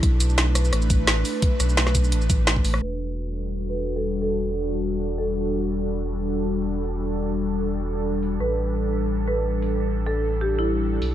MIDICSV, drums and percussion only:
0, 0, Header, 1, 2, 480
1, 0, Start_track
1, 0, Key_signature, 1, "minor"
1, 0, Tempo, 348837
1, 43, Time_signature, 4, 2, 24, 8
1, 15338, End_track
2, 0, Start_track
2, 0, Title_t, "Drums"
2, 40, Note_on_c, 9, 36, 113
2, 40, Note_on_c, 9, 42, 84
2, 178, Note_off_c, 9, 36, 0
2, 178, Note_off_c, 9, 42, 0
2, 280, Note_on_c, 9, 42, 94
2, 280, Note_on_c, 9, 82, 63
2, 407, Note_off_c, 9, 82, 0
2, 407, Note_on_c, 9, 82, 30
2, 418, Note_off_c, 9, 42, 0
2, 520, Note_on_c, 9, 38, 107
2, 520, Note_on_c, 9, 42, 80
2, 545, Note_off_c, 9, 82, 0
2, 658, Note_off_c, 9, 38, 0
2, 658, Note_off_c, 9, 42, 0
2, 761, Note_on_c, 9, 37, 50
2, 761, Note_on_c, 9, 42, 98
2, 761, Note_on_c, 9, 82, 66
2, 887, Note_off_c, 9, 82, 0
2, 887, Note_on_c, 9, 82, 30
2, 898, Note_off_c, 9, 37, 0
2, 898, Note_off_c, 9, 42, 0
2, 1000, Note_on_c, 9, 37, 48
2, 1000, Note_on_c, 9, 42, 82
2, 1025, Note_off_c, 9, 82, 0
2, 1126, Note_on_c, 9, 82, 30
2, 1137, Note_off_c, 9, 37, 0
2, 1137, Note_off_c, 9, 42, 0
2, 1239, Note_off_c, 9, 82, 0
2, 1239, Note_on_c, 9, 42, 92
2, 1239, Note_on_c, 9, 82, 61
2, 1241, Note_on_c, 9, 36, 103
2, 1377, Note_off_c, 9, 42, 0
2, 1377, Note_off_c, 9, 82, 0
2, 1378, Note_off_c, 9, 36, 0
2, 1479, Note_on_c, 9, 38, 117
2, 1479, Note_on_c, 9, 42, 84
2, 1616, Note_off_c, 9, 38, 0
2, 1616, Note_off_c, 9, 42, 0
2, 1719, Note_on_c, 9, 46, 77
2, 1719, Note_on_c, 9, 82, 61
2, 1857, Note_off_c, 9, 46, 0
2, 1857, Note_off_c, 9, 82, 0
2, 1959, Note_on_c, 9, 42, 82
2, 1961, Note_on_c, 9, 36, 116
2, 2096, Note_off_c, 9, 42, 0
2, 2099, Note_off_c, 9, 36, 0
2, 2201, Note_on_c, 9, 37, 33
2, 2201, Note_on_c, 9, 42, 98
2, 2201, Note_on_c, 9, 82, 65
2, 2328, Note_off_c, 9, 82, 0
2, 2328, Note_on_c, 9, 82, 30
2, 2338, Note_off_c, 9, 37, 0
2, 2338, Note_off_c, 9, 42, 0
2, 2440, Note_on_c, 9, 38, 112
2, 2440, Note_on_c, 9, 42, 82
2, 2465, Note_off_c, 9, 82, 0
2, 2568, Note_off_c, 9, 38, 0
2, 2568, Note_on_c, 9, 37, 35
2, 2568, Note_on_c, 9, 38, 38
2, 2578, Note_off_c, 9, 42, 0
2, 2680, Note_on_c, 9, 42, 98
2, 2680, Note_on_c, 9, 82, 61
2, 2681, Note_on_c, 9, 36, 60
2, 2705, Note_off_c, 9, 37, 0
2, 2705, Note_off_c, 9, 38, 0
2, 2807, Note_off_c, 9, 82, 0
2, 2807, Note_on_c, 9, 82, 28
2, 2818, Note_off_c, 9, 42, 0
2, 2819, Note_off_c, 9, 36, 0
2, 2919, Note_on_c, 9, 42, 87
2, 2945, Note_off_c, 9, 82, 0
2, 3047, Note_on_c, 9, 82, 28
2, 3057, Note_off_c, 9, 42, 0
2, 3160, Note_off_c, 9, 82, 0
2, 3160, Note_on_c, 9, 42, 94
2, 3160, Note_on_c, 9, 82, 62
2, 3161, Note_on_c, 9, 36, 109
2, 3297, Note_off_c, 9, 42, 0
2, 3297, Note_off_c, 9, 82, 0
2, 3299, Note_off_c, 9, 36, 0
2, 3400, Note_on_c, 9, 38, 119
2, 3400, Note_on_c, 9, 42, 83
2, 3528, Note_on_c, 9, 36, 60
2, 3538, Note_off_c, 9, 38, 0
2, 3538, Note_off_c, 9, 42, 0
2, 3641, Note_on_c, 9, 46, 75
2, 3641, Note_on_c, 9, 82, 61
2, 3666, Note_off_c, 9, 36, 0
2, 3767, Note_on_c, 9, 37, 61
2, 3778, Note_off_c, 9, 46, 0
2, 3778, Note_off_c, 9, 82, 0
2, 3905, Note_off_c, 9, 37, 0
2, 5562, Note_on_c, 9, 46, 68
2, 5700, Note_off_c, 9, 46, 0
2, 7481, Note_on_c, 9, 46, 69
2, 7619, Note_off_c, 9, 46, 0
2, 9401, Note_on_c, 9, 46, 75
2, 9539, Note_off_c, 9, 46, 0
2, 11320, Note_on_c, 9, 46, 79
2, 11458, Note_off_c, 9, 46, 0
2, 13241, Note_on_c, 9, 46, 75
2, 13378, Note_off_c, 9, 46, 0
2, 15161, Note_on_c, 9, 46, 76
2, 15298, Note_off_c, 9, 46, 0
2, 15338, End_track
0, 0, End_of_file